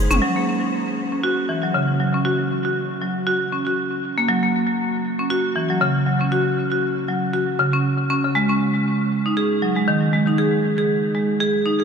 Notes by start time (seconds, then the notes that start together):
0.11 F#1 C#4, mid tom, shaker
0.22 F#3
0.36 A#3
1.12 C#4
1.24 F#4
1.49 E3
1.63 F#3
1.74 C#3
2.00 F#3
2.14 C#4
2.25 F#4
2.65 F#4
3.02 F#3
3.27 F#4
3.52 C#4
3.67 F#4
4.18 A#3
4.29 F#3
4.43 A#3
5.19 C#4
5.30 F#4
5.56 E3
5.70 F#3
5.81 C#3
6.06 F#3
6.21 C#4
6.32 F#4
6.71 F#4
7.08 F#3
7.34 F#4
7.59 C#3
7.73 C#4
8.10 C#4
8.24 C#3
8.35 G#3
8.49 C#4
9.26 D#4
9.37 G#4
9.62 F#3
9.77 G#3
9.88 D#3
10.13 G#3
10.27 D#4
10.38 G#4
10.78 G#4
11.15 G#3
11.40 G#4
11.66 D#4
11.80 G#4